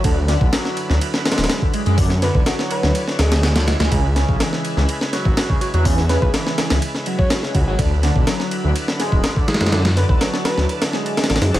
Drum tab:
RD |x---x---x---x---x---xxxxx---x-x-|----x---x---x---x---x-x-x-x-x-x-|x---x---x---x---x---x---x---x-x-|----x---x---x-x-x---x---x---x---|
HH |--------------------------------|o-------------------------------|--------------------------------|o-------------------------------|
SD |----o---o-o---o---o-ooooo-------|--o-o---o-o---o---o-o-o-o-o-o-o-|----o---o-o---o---o-o---o-------|--o-o---o-o-o-o---o-----o-o-----|
BD |o-----o-------------------o-----|o-----o-------------------------|o-----o---------------o---o-----|o-----o---------------o-----o---|

RD |x---x---x---x---x---x---x---xxxx|x-x-x---x---x---x-x---x-xxxxx-x-|
HH |--------------------------------|--------------------------------|
SD |----o---o-o-------o-o---o---oooo|o-o-o---o-o-o-o---o-o---ooooo-o-|
BD |o-----o---------------o---o-----|------o-------------------------|